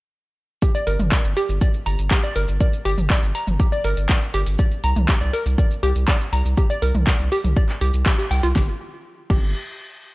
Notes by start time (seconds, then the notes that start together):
0.62 G4, kick, shaker
0.75 D5, shaker
0.87 G1 A#4, open hi-hat
1.00 G1, mid tom, shaker
1.12 D5, kick, clap, shaker
1.24 G1, shaker
1.37 G4, open hi-hat, shaker
1.49 G1, shaker
1.61 D5, kick, shaker
1.74 shaker
1.86 G1 A#5, open hi-hat
1.99 G1, shaker
2.11 G4, kick, clap, shaker
2.23 D5, shaker
2.36 G1 A#4, open hi-hat, shaker
2.48 G1, shaker
2.61 D5, kick, shaker
2.73 shaker
2.85 G1 G4, open hi-hat
2.98 G1, mid tom, shaker
3.10 D5, kick, clap, shaker
3.23 G1, shaker
3.35 A#5, open hi-hat, shaker
3.47 G1, mid tom, shaker
3.60 G4, kick, shaker
3.72 D5, shaker
3.84 G1 A#4, open hi-hat
3.97 G1, shaker
4.09 D5, kick, clap, shaker
4.22 shaker
4.34 G1 G4, open hi-hat, shaker
4.46 G1, open hi-hat, shaker
4.59 D5, kick, shaker
4.71 shaker
4.84 C2 A#5, open hi-hat
4.96 C2, mid tom, shaker
5.09 G4, kick, clap, shaker
5.21 C2 D5, shaker
5.33 A#4, open hi-hat, shaker
5.46 C2, shaker
5.58 D5, kick, shaker
5.71 shaker
5.83 C2 G4, open hi-hat
5.96 C2, shaker
6.08 D5, kick, clap, shaker
6.21 shaker
6.33 C2 A#5, open hi-hat, shaker
6.45 C2, shaker
6.57 G4, kick, shaker
6.70 D5, shaker
6.82 C2 A#4, open hi-hat, shaker
6.95 C2, mid tom, shaker
7.07 D5, kick, clap, shaker
7.20 C2, shaker
7.32 G4, open hi-hat, shaker
7.44 C2, mid tom, shaker
7.57 D5, kick, shaker
7.69 clap, shaker
7.81 C2 G4, open hi-hat
7.94 C2, shaker
8.06 G4, kick, clap, shaker
8.19 G4, shaker
8.31 C2 G5, open hi-hat, shaker
8.43 C2 F4, open hi-hat, shaker
8.56 G1 G4, kick, snare
9.30 G1 G4, kick, crash